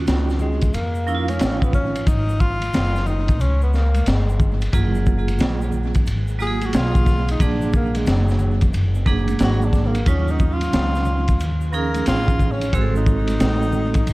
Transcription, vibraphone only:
Already playing: C#4 D#4 F4 F#4
1.07 F3 C#4 D#4 E4
1.15 F4
4.73 F#3 A#3 F4 G#4
6.39 F#3 A#3 F4 G4
6.47 G#4
7.40 F#3 A#3 D4 G#4
9.06 F#3 A#3 D4 G#4
10.06 F#3 C#4 D#4 F4
11.73 F3 C#4 D#4 G#4
12.73 G#3 C4 F#4 G#4
12.81 A4

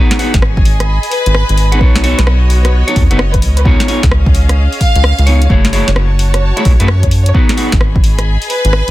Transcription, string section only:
Already playing: F#4 G#4 C#5
0.18 D#5
0.31 G#5
0.82 B5
1.81 B3
1.88 F#4 C#5
3.42 C#4
3.56 G#4
3.69 F5
5.50 F#4
5.76 C#5
6.00 A5
7.35 G#4
7.49 D#5
7.56 B5
7.93 G#5

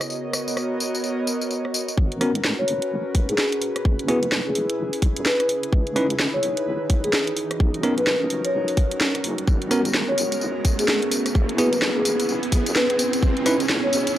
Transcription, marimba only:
2.59 C#5
3.29 G#4
3.38 G#4
4.09 B4
4.46 G#4
4.56 G#4
5.26 B4
5.40 B4
6.34 C#5
7.04 G#4
7.98 B4
8.07 B4
8.45 C#5
10.09 C#5
10.79 G#4
10.88 G#4
11.58 B4
11.96 G#4
12.05 G#4
12.75 B4
12.90 B4
13.84 C#5

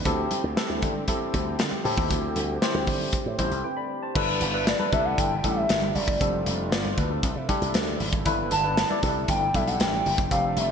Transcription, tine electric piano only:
0.05 C4 E4 G4 A4
0.56 C4 E4 G4 A4
1.08 C4 E4 G4 A4
1.84 C4 E4 G4 A4
2.61 C4 E4 G4 C5
3.38 C4 E4 G4 C5
3.64 B4 G5
3.77 D5 B5
4.03 C5 A5
4.15 D4 E4 A4 B4
4.53 D4 E4 A4 B4
4.79 D4 E4 A4 B4
4.92 D4 E4 G4 A4
5.43 D4 E4 G4 A4
6.20 C4 D4 G4 A4
6.72 F4 D5
6.98 D4 B4
7.11 C4 A4
7.49 D4 E4 G4 A4
8.25 D4 E4 A4 B4
8.64 D4 E4 A4 B4
8.90 D4 E4 A4 D5
9.03 D4 D#4 G4 A4
9.09 E4
9.54 D4 E4 G4 A4
10.31 C4 D4 G4 A4

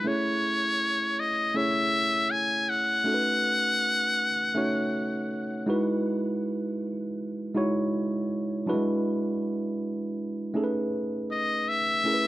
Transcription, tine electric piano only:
0.04 A3 C#4 E4 G#4 C#5
1.54 A3 C#4 E4 G#4 C#5
3.04 A3 C#4 D#4 F#4 A4
3.14 B4
4.55 A3 C#4 D#4 F#4 C#5
5.66 G#3 D#4 E4 F#4 B4
7.54 G#3 D#4 E4 F#4 C#5
8.66 F#3 D4 E4 F#4 B4
8.73 G#3
10.54 A3 C#4 D#4 G#4 A4
10.64 B4
12.04 A3 C#4 E4 G#4 A#4
12.14 B4

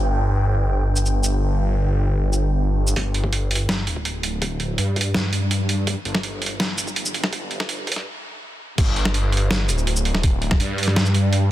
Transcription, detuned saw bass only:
Already playing: G1
2.96 G1
3.87 D1
4.78 G2
6.05 G1
7.24 C2
7.33 G1
7.87 G2
8.78 G1
9.69 D1
10.60 G2

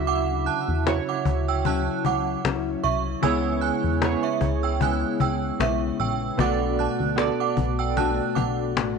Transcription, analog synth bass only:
Already playing: D2
0.68 E2
1.25 D2
2.04 C#2
2.44 C#2
2.83 C2
3.23 C#2
3.84 E2
4.41 C#2
5.20 C#2
5.59 B1
5.99 A#1
6.38 B1
7.00 D2
7.57 B1
8.36 B1
8.75 A1

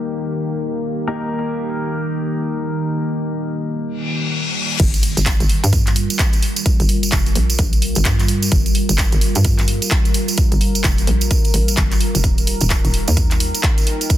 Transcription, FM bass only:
4.80 G1
5.17 G1
5.40 G1
5.64 G2
6.80 G1
7.12 F1
7.36 A#1
7.59 A#1
7.96 G1
8.05 G2
8.52 G1
8.89 G1
9.13 G1
9.36 G2
10.52 G1
10.84 F1
11.07 A#1
11.54 A1
11.77 G1
12.15 F1
12.24 D#1
12.61 D#1
12.85 D#1
13.08 D#2

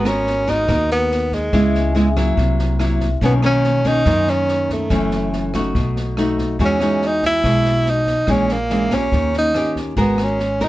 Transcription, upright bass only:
Already playing: G#1
0.69 D#2
1.53 C#2
2.37 C2
3.21 B1
4.06 F#2
4.90 F#1
5.75 B1
6.59 E2
7.43 B1
8.28 A#1
9.12 D#2
9.97 G#1

